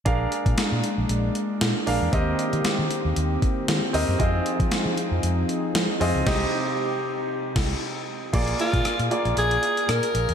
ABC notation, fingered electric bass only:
X:1
M:4/4
L:1/16
Q:"Swing 16ths" 1/4=116
K:Bbmix
V:1 name="Fingered electric bass" clef=bass
B,,,2 z B,, z B,, z B,,, B,,,2 z2 B,, z B,,, =E,, | E,,2 z E, z E, z E,, E,,2 z2 E, z E,, _G,, | F,,2 z F, z F, z F,, F,,2 z2 F, z F,, _D,, | C,,2 z8 C,,2 z4 |
B,,,2 z B,, z B,, z B,,, B,,,2 z2 B,, z B,,, =E,, |]